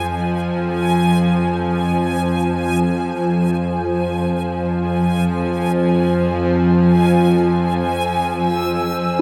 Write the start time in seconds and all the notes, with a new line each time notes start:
Already playing: F2 F3 C5 G#5
7.95 E6